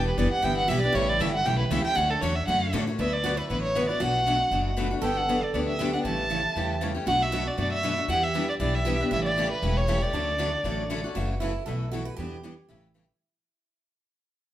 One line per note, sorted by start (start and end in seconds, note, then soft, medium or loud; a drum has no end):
0.00 0.17 E1 medium
0.00 0.10 B3 medium
0.00 0.10 D4 medium
0.00 0.10 E4 medium
0.00 0.10 G4 medium
0.00 0.42 G4 medium
0.00 0.10 B4 medium
0.08 0.20 B4 medium
0.18 0.31 F#1 loud
0.18 0.28 E3 medium
0.18 0.28 G3 medium
0.18 0.28 B3 medium
0.18 0.28 D4 medium
0.18 0.28 E4 medium
0.18 0.28 G4 medium
0.18 0.28 B4 loud
0.18 0.31 D5 medium
0.32 0.46 F#5 loud
0.32 muted upright bass stroke soft
0.42 0.68 G1 medium
0.42 0.61 E3 medium
0.42 0.61 G3 medium
0.42 0.61 B3 medium
0.42 0.62 D4 medium
0.42 0.67 E4 medium
0.42 0.62 E4 medium
0.42 0.62 G4 medium
0.42 0.62 B4 medium
0.42 0.57 G5 loud
0.57 0.70 F#5 medium
0.68 0.93 B1 medium
0.68 0.79 E3 loud
0.68 0.79 G3 medium
0.68 0.79 B3 medium
0.68 0.79 D4 loud
0.68 0.79 E4 medium
0.68 0.92 G4 loud
0.68 0.80 G4 loud
0.68 0.79 B4 loud
0.68 0.81 E5 medium
0.82 0.95 B3 soft
0.82 0.94 D4 medium
0.82 0.94 G4 medium
0.82 0.96 D5 loud
0.93 1.19 A1 medium
0.93 1.12 C#3 medium
0.93 1.13 E3 medium
0.93 1.12 G3 medium
0.93 1.13 A3 medium
0.93 1.13 C#4 medium
0.93 1.91 E4 loud
0.93 1.13 E4 medium
0.93 1.13 G4 medium
0.93 1.13 A4 medium
0.93 1.11 C#5 medium
1.09 1.22 D5 loud
1.19 1.44 G1 medium
1.19 1.30 C#3 medium
1.19 1.30 E3 medium
1.19 1.29 G3 medium
1.19 1.30 A3 medium
1.19 1.30 C#4 medium
1.19 1.30 E4 medium
1.19 1.31 G4 loud
1.19 1.30 A4 loud
1.19 1.33 E5 medium
1.34 1.47 F#5 loud
1.45 1.70 B1 loud
1.45 1.63 C#3 medium
1.45 1.63 E3 medium
1.45 1.63 G3 medium
1.45 1.63 A3 medium
1.45 1.64 C#4 medium
1.45 1.63 E4 medium
1.45 1.64 G4 medium
1.45 1.63 A4 medium
1.45 1.59 G5 loud
1.59 1.73 B4 medium
1.70 1.84 C#2 medium
1.70 1.81 C#3 loud
1.70 1.81 E3 loud
1.70 1.81 G3 medium
1.70 1.81 A3 loud
1.70 1.81 C#4 loud
1.70 1.81 E4 medium
1.70 1.81 G4 loud
1.70 1.81 A4 medium
1.70 1.84 E5 medium
1.85 1.96 A3 medium
1.85 1.97 C#4 medium
1.85 1.96 G4 medium
1.85 1.97 G5 loud
1.85 muted upright bass stroke soft
1.95 2.21 D2 medium
1.95 2.14 D3 medium
1.95 2.14 F#3 medium
1.95 2.15 A3 medium
1.95 2.15 C#4 medium
1.95 2.82 D4 medium
1.95 2.15 F#4 medium
1.95 2.15 A4 medium
1.95 2.12 F#5 medium
2.10 2.23 A4 medium
2.21 2.47 E2 medium
2.21 2.32 D3 loud
2.21 2.32 F#3 medium
2.21 2.32 A3 loud
2.21 2.33 C#4 loud
2.21 2.33 F#4 loud
2.21 2.32 A4 loud
2.21 2.37 C#5 medium
2.36 2.47 E5 medium
2.47 2.72 F#2 loud
2.47 2.65 D3 medium
2.47 2.66 F#3 medium
2.47 2.66 A3 medium
2.47 2.66 C#4 medium
2.47 2.66 F#4 medium
2.47 2.66 A4 medium
2.47 2.72 F#5 medium
2.73 2.98 A2 loud
2.73 2.83 D3 loud
2.73 2.83 F#3 medium
2.73 2.83 A3 loud
2.73 2.83 C#4 loud
2.73 2.83 F#4 loud
2.73 2.83 A4 medium
2.87 2.99 A3 medium
2.87 2.99 C#4 medium
2.87 2.98 F#4 medium
2.98 3.39 D2 medium
2.98 3.16 D3 medium
2.98 3.17 F#3 medium
2.98 3.16 A3 medium
2.98 3.17 B3 medium
2.98 3.16 D4 medium
2.98 3.22 D4 medium
2.98 3.17 F#4 medium
2.98 3.17 B4 medium
2.98 3.15 E5 medium
3.13 3.40 D5 medium
3.24 3.34 D3 medium
3.24 3.34 F#3 medium
3.24 3.34 A3 medium
3.24 3.34 B3 medium
3.24 3.34 D4 medium
3.24 3.29 F#4 medium
3.24 3.35 F#4 medium
3.24 3.35 B4 medium
3.37 4.02 E4 medium
3.37 3.49 B4 medium
3.50 3.90 A1 medium
3.50 3.67 D3 medium
3.50 3.68 F#3 medium
3.50 3.67 A3 medium
3.50 3.68 B3 medium
3.50 3.68 D4 medium
3.50 3.68 F#4 medium
3.50 3.62 B4 medium
3.50 3.68 B4 medium
3.63 3.87 C#5 medium
3.75 3.85 D3 medium
3.75 3.85 F#3 medium
3.75 3.85 A3 medium
3.75 3.85 B3 medium
3.75 3.85 D4 medium
3.75 3.86 F#4 medium
3.75 3.86 B4 medium
3.89 4.01 B3 soft
3.89 4.01 F#4 soft
3.89 4.00 B4 medium
3.89 4.03 D5 medium
4.00 4.41 B1 medium
4.00 4.19 B2 medium
4.00 4.19 F#3 medium
4.00 4.19 A3 medium
4.00 4.19 D4 medium
4.00 4.98 F#4 medium
4.00 4.19 F#4 medium
4.00 4.19 B4 medium
4.00 4.78 F#5 loud
4.27 4.36 B2 medium
4.27 4.36 F#3 medium
4.27 4.37 A3 medium
4.27 4.37 D4 medium
4.27 4.37 F#4 loud
4.27 4.36 B4 medium
4.51 4.92 F#1 medium
4.51 4.69 B2 medium
4.51 4.69 F#3 medium
4.51 4.70 A3 medium
4.51 4.70 D4 medium
4.51 4.70 F#4 medium
4.51 4.70 B4 medium
4.77 4.87 B2 medium
4.77 4.87 F#3 medium
4.77 4.87 A3 medium
4.77 4.87 D4 loud
4.77 4.87 F#4 medium
4.77 4.88 B4 medium
4.91 5.03 A3 soft
4.91 5.02 D4 soft
4.91 5.02 F#4 medium
5.02 5.43 G1 medium
5.02 5.20 D3 medium
5.02 5.21 F#3 medium
5.02 5.21 B3 medium
5.02 5.21 D4 medium
5.02 5.21 G4 medium
5.02 5.78 A4 loud
5.02 5.19 G5 medium
5.17 5.45 F#5 medium
5.29 5.38 D3 medium
5.29 5.38 F#3 medium
5.29 5.39 B3 medium
5.29 5.39 D4 medium
5.29 5.39 G4 loud
5.43 5.53 D5 medium
5.53 5.94 D2 medium
5.53 5.72 D3 medium
5.53 5.72 F#3 medium
5.53 5.72 B3 medium
5.53 5.72 D4 medium
5.53 5.72 G4 medium
5.53 5.60 D5 medium
5.67 5.91 E5 medium
5.79 5.89 D3 medium
5.79 5.89 F#3 medium
5.79 5.89 B3 medium
5.79 5.90 D4 medium
5.79 6.05 G4 medium
5.79 5.90 G4 loud
5.93 6.05 B3 soft
5.93 6.05 D4 medium
5.93 6.04 G4 medium
5.93 5.98 F#5 medium
6.04 6.45 A1 medium
6.04 6.22 C#3 medium
6.04 6.23 E3 medium
6.04 6.23 G3 medium
6.04 6.23 A3 medium
6.04 6.23 C#4 medium
6.04 6.91 E4 medium
6.04 6.23 E4 medium
6.04 6.23 G4 medium
6.04 6.23 A4 medium
6.04 6.77 A5 medium
6.30 6.40 C#3 medium
6.30 6.40 E3 medium
6.30 6.40 G3 medium
6.30 6.40 A3 medium
6.30 6.40 C#4 medium
6.30 6.41 E4 medium
6.30 6.40 G4 medium
6.30 6.41 A4 medium
6.56 6.96 E2 medium
6.56 6.73 C#3 medium
6.56 6.74 E3 medium
6.56 6.74 G3 medium
6.56 6.74 A3 medium
6.56 6.74 C#4 medium
6.56 6.74 E4 medium
6.56 6.74 G4 medium
6.56 6.74 A4 medium
6.81 6.91 C#3 medium
6.81 6.91 E3 medium
6.81 6.91 G3 medium
6.81 6.91 A3 medium
6.81 6.91 C#4 medium
6.81 6.92 E4 medium
6.81 6.92 G4 medium
6.81 6.92 A4 medium
6.95 7.06 A3 soft
6.95 7.07 C#4 medium
6.95 7.06 G4 medium
7.06 7.47 B1 medium
7.06 7.24 B2 medium
7.06 7.24 F#3 medium
7.06 7.25 A3 medium
7.06 7.25 D4 medium
7.06 7.31 F#4 medium
7.06 7.25 F#4 medium
7.06 7.25 B4 medium
7.06 7.24 F#5 loud
7.23 7.49 E5 medium
7.32 7.42 B2 medium
7.32 7.42 F#3 medium
7.32 7.42 A3 medium
7.32 7.42 D4 medium
7.32 8.09 F#4 medium
7.32 7.43 F#4 medium
7.32 7.43 B4 medium
7.48 7.58 D5 medium
7.57 7.98 F#2 medium
7.57 7.75 B2 medium
7.57 7.75 F#3 medium
7.57 7.76 A3 medium
7.57 7.76 D4 medium
7.57 7.76 F#4 medium
7.57 7.76 B4 medium
7.57 7.72 D5 medium
7.73 7.96 E5 loud
7.83 7.93 B2 medium
7.83 7.93 F#3 medium
7.83 7.93 A3 medium
7.83 7.94 D4 medium
7.83 7.94 F#4 loud
7.83 7.94 B4 medium
7.97 8.08 A3 medium
7.97 8.08 D4 soft
7.97 8.08 F#4 medium
8.08 8.49 E2 medium
8.08 8.26 E3 medium
8.08 8.27 G3 medium
8.08 8.26 B3 medium
8.08 8.27 D4 medium
8.08 8.27 E4 medium
8.08 8.27 G4 medium
8.08 8.59 G4 medium
8.08 8.27 B4 medium
8.08 8.25 F#5 medium
8.24 8.49 E5 medium
8.34 8.44 E3 medium
8.34 8.44 G3 medium
8.34 8.44 B3 medium
8.34 8.44 D4 medium
8.34 8.44 E4 medium
8.34 8.45 G4 medium
8.34 8.44 B4 medium
8.49 8.54 D5 medium
8.60 9.00 B1 medium
8.60 8.78 E3 medium
8.60 8.78 G3 medium
8.60 8.78 B3 medium
8.60 8.78 D4 medium
8.60 8.85 E4 medium
8.60 8.78 E4 medium
8.60 8.78 G4 medium
8.60 8.78 B4 medium
8.60 8.76 D5 medium
8.75 9.00 E5 medium
8.85 8.95 E3 medium
8.85 8.95 G3 medium
8.85 8.96 B3 medium
8.85 8.96 D4 medium
8.85 8.95 E4 medium
8.85 9.11 G4 medium
8.85 8.96 G4 medium
8.85 8.96 B4 medium
9.00 9.12 B3 soft
9.00 9.11 D4 medium
9.00 9.11 G4 medium
9.11 9.52 A1 medium
9.11 9.29 C#3 medium
9.11 9.30 E3 medium
9.11 9.29 G3 medium
9.11 9.30 A3 medium
9.11 9.30 C#4 medium
9.11 10.13 E4 medium
9.11 9.29 E4 medium
9.11 9.30 G4 medium
9.11 9.29 A4 medium
9.11 9.25 E5 medium
9.25 9.49 D5 medium
9.36 9.47 C#3 medium
9.36 9.47 E3 medium
9.36 9.46 G3 medium
9.36 9.47 A3 medium
9.36 9.47 C#4 medium
9.36 9.46 E4 medium
9.36 9.47 G4 loud
9.36 9.47 A4 medium
9.52 9.79 B4 medium
9.62 10.03 E1 medium
9.62 9.80 C#3 medium
9.62 9.80 E3 medium
9.62 9.80 G3 medium
9.62 9.80 A3 medium
9.62 9.81 C#4 medium
9.62 9.81 E4 medium
9.62 9.81 G4 medium
9.62 9.80 A4 medium
9.77 10.04 C#5 medium
9.87 9.97 C#3 medium
9.87 9.98 E3 medium
9.87 9.98 G3 medium
9.87 9.98 A3 medium
9.87 9.98 C#4 medium
9.87 9.98 E4 medium
9.87 9.98 G4 medium
9.87 9.98 A4 medium
10.01 10.13 A3 soft
10.01 10.13 C#4 soft
10.01 10.12 G4 medium
10.01 11.04 D5 medium
10.13 10.54 D2 medium
10.13 10.31 D3 medium
10.13 10.32 F#3 medium
10.13 10.32 A3 medium
10.13 10.32 C#4 medium
10.13 11.00 D4 medium
10.13 10.32 F#4 medium
10.13 10.32 A4 medium
10.38 10.48 D3 medium
10.38 10.48 F#3 medium
10.38 10.49 A3 medium
10.38 10.49 C#4 medium
10.38 10.49 F#4 medium
10.38 10.49 A4 medium
10.63 11.04 A1 medium
10.63 10.82 D3 medium
10.63 10.82 F#3 medium
10.63 10.82 A3 medium
10.63 10.82 C#4 medium
10.63 10.83 F#4 medium
10.63 10.83 A4 medium
10.90 11.00 D3 medium
10.90 11.00 F#3 medium
10.90 11.00 A3 medium
10.90 11.00 C#4 medium
10.90 11.00 F#4 medium
10.90 11.00 A4 medium
11.04 11.15 A3 soft
11.04 11.16 C#4 medium
11.04 11.15 F#4 medium
11.15 11.56 F#1 medium
11.15 11.33 C#3 medium
11.15 11.33 E3 medium
11.15 11.33 F#3 medium
11.15 11.34 A3 medium
11.15 11.34 C#4 medium
11.15 11.34 E4 medium
11.15 11.40 F#4 medium
11.15 11.34 F#4 medium
11.15 11.34 A4 medium
11.40 11.51 C#3 medium
11.40 11.51 E3 medium
11.40 11.51 F#3 medium
11.40 11.51 A3 medium
11.40 11.51 C#4 medium
11.40 11.64 E4 medium
11.40 11.51 E4 medium
11.40 11.52 F#4 medium
11.40 11.51 A4 medium
11.66 12.07 B1 medium
11.66 11.84 B2 medium
11.66 11.85 E3 medium
11.66 11.85 A3 medium
11.66 11.85 E4 medium
11.66 11.85 F#4 medium
11.66 11.91 A4 medium
11.66 11.85 B4 medium
11.92 12.02 B2 medium
11.92 12.02 E3 medium
11.92 12.03 A3 medium
11.92 12.03 E4 medium
11.92 12.05 F#4 medium
11.92 12.03 F#4 medium
11.92 12.02 B4 medium
12.05 12.16 B4 medium
12.17 12.58 E2 medium
12.17 12.36 E3 medium
12.17 12.36 G3 medium
12.17 12.36 B3 medium
12.17 12.36 D4 medium
12.17 12.36 E4 medium
12.17 12.70 G4 medium
12.17 12.36 G4 medium
12.17 12.36 B4 medium
12.43 12.53 E3 medium
12.43 12.53 G3 medium
12.43 12.53 B3 medium
12.43 12.54 D4 medium
12.43 12.54 E4 medium
12.43 12.54 G4 medium
12.43 12.54 B4 medium
12.69 13.10 A1 medium
12.69 12.87 C#3 medium
12.69 12.87 E3 medium
12.69 12.87 G3 medium
12.69 12.87 A3 medium
12.69 12.87 C#4 medium
12.69 13.16 E4 medium
12.69 12.87 E4 medium
12.69 12.87 G4 medium
12.69 12.88 A4 medium
12.94 13.04 C#3 medium
12.94 13.04 E3 medium
12.94 13.04 G3 medium
12.94 13.04 A3 medium
12.94 13.05 C#4 medium
12.94 13.05 E4 medium
12.94 13.05 G4 medium
12.94 13.05 A4 medium